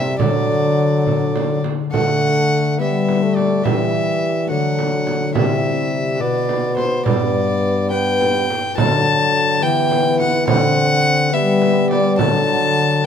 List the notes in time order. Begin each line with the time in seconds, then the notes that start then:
Already playing: C3 G3 G4 C5 E5
0.20 D3 F#3 D5, frame drum
1.07 D4 A4, frame drum
1.36 frame drum
1.64 frame drum
1.90 D3 A3 D4 A4 F#5
1.94 frame drum
2.76 G3 B3 G4
2.81 E5
3.09 frame drum
3.23 A3
3.36 D5, frame drum
3.62 E3 G3 B3 G4 E5, frame drum
4.46 D3 F#3 A3 D4 F#4 F#5
4.79 frame drum
5.07 frame drum
5.31 C3 C4 E4 G4, frame drum
5.36 C3 G3 E5
6.16 B2 D4 F#4 B4
6.21 B2 B3 D5
6.49 frame drum
6.77 C5, frame drum
7.02 G2 D4 G4 B4, frame drum
7.06 B3 D5
7.88 D4 G4 B4 G5
7.93 B3
8.21 frame drum
8.50 frame drum
8.74 D3 D4 F#4 A4
8.78 D3 F#3 A5, frame drum
9.59 E3 B3 G4 B4 G5
9.63 E3 B3
9.91 frame drum
10.20 F#5, frame drum
10.44 D3 C4 D4 A4 C5 F#5, frame drum
11.29 G3 B3 D4 G4 B4
11.33 G3 E5
11.62 frame drum
11.90 D5, frame drum
12.16 D3 F#3 D4 F#4 A4 A5, frame drum
13.01 D4 G4